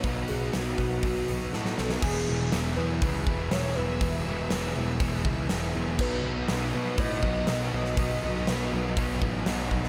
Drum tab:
CC |----------------|x---------------|----------------|x---------------|
HH |o-o-o-o-o-o-----|----o---o---o---|o---o---o---o---|----o---o---o---|
SD |----o-------oooo|----o-------o---|----o-------o---|----o-------o--o|
BD |o-----o-o-------|o-------o-o-----|o-------o-o-----|o-------o-o-----|

CC |----------------|
HH |o---o---o---o---|
SD |----o-------o--o|
BD |o-------o-o---o-|